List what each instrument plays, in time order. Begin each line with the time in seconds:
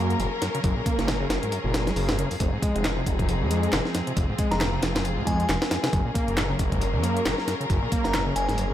Already playing: detuned saw bass F#2, string section F#3 C#4 G#4 A#4, acid bass A#3
0.10 closed hi-hat
0.19 detuned saw bass F#1, acid bass F#2, closed hi-hat
0.42 acid bass F#2, snare, closed hi-hat
0.55 acid bass C#3, closed hi-hat
0.64 detuned saw bass F#1, acid bass F#2, kick, closed hi-hat
0.77 acid bass A#2
0.86 acid bass A#3, kick, closed hi-hat
0.98 detuned saw bass F#1, snare, closed hi-hat
1.08 acid bass F#2, snare, closed hi-hat
1.21 acid bass C#3
1.29 detuned saw bass F#1, snare, closed hi-hat
1.43 acid bass G#2, closed hi-hat
1.52 acid bass F#2, closed hi-hat
1.64 detuned saw bass F#1, acid bass A#2
1.74 snare, closed hi-hat
1.87 acid bass A#3, snare, closed hi-hat
1.96 detuned saw bass F#1, acid bass C#3, closed hi-hat, open hi-hat
2.09 acid bass F#2, snare, closed hi-hat
2.18 acid bass C#3, closed hi-hat
2.31 acid bass F2, closed hi-hat, open hi-hat
2.40 detuned saw bass F1, acid bass F2, string section F3 C4 D#4, kick, closed hi-hat
2.53 acid bass G#2
2.62 acid bass G#3, kick, closed hi-hat
2.75 detuned saw bass F1, closed hi-hat
2.84 acid bass F2, snare, clap, closed hi-hat
2.97 acid bass C3
3.06 detuned saw bass F1, kick, closed hi-hat
3.19 acid bass F#2, kick, closed hi-hat
3.28 acid bass F2, closed hi-hat
3.41 detuned saw bass F2, acid bass G#2
3.51 acid bass G#3, closed hi-hat
3.63 closed hi-hat
3.72 detuned saw bass F1, acid bass F2, snare, clap, closed hi-hat
3.85 snare
3.95 acid bass F2, snare, closed hi-hat
4.07 acid bass C3, closed hi-hat
4.16 detuned saw bass F1, acid bass F2, string section F4, kick, closed hi-hat
4.29 acid bass G#2
4.39 acid bass G#3, kick, closed hi-hat
4.51 detuned saw bass F1, synth bell A#5, snare, closed hi-hat
4.61 acid bass F2, synth bell A#5, snare, clap, closed hi-hat
4.73 acid bass C3
4.83 detuned saw bass F1, snare, closed hi-hat
4.95 acid bass F#2, snare, closed hi-hat
5.04 acid bass F2, closed hi-hat
5.17 detuned saw bass F2, acid bass G#2
5.26 acid bass G#3, synth bell G#5, kick, closed hi-hat
5.40 closed hi-hat
5.49 detuned saw bass F1, acid bass F2, snare, clap, closed hi-hat
5.62 snare, closed hi-hat
5.71 acid bass F2, snare, closed hi-hat
5.83 acid bass C3, snare, closed hi-hat
5.92 detuned saw bass F#1, acid bass F#2, string section F#3 C#4 A#4, kick, closed hi-hat
6.05 acid bass A#2
6.14 acid bass A#3, kick, closed hi-hat
6.28 detuned saw bass F#1, closed hi-hat
6.37 acid bass F#2, snare, clap, closed hi-hat
6.49 acid bass C#3
6.59 detuned saw bass F#1, kick, closed hi-hat
6.71 acid bass G#2, kick, closed hi-hat
6.81 acid bass F#2, closed hi-hat
6.94 detuned saw bass F#2, acid bass A#2
7.03 acid bass A#3, closed hi-hat
7.17 closed hi-hat
7.25 detuned saw bass F#1, acid bass F#2, snare, clap, closed hi-hat
7.38 snare
7.47 acid bass F#2, snare, closed hi-hat
7.60 acid bass C#3, closed hi-hat
7.70 detuned saw bass F#1, acid bass F#2, kick, closed hi-hat
7.83 acid bass A#2
7.92 acid bass A#3, kick, closed hi-hat
8.04 detuned saw bass F#1, synth bell A#5, snare, closed hi-hat
8.14 acid bass F#2, synth bell A#5, snare, clap, closed hi-hat
8.27 acid bass C#3
8.36 detuned saw bass F#1, synth bell G#5, closed hi-hat
8.48 acid bass G#2, synth bell G#5, snare, closed hi-hat
8.58 acid bass F#2, closed hi-hat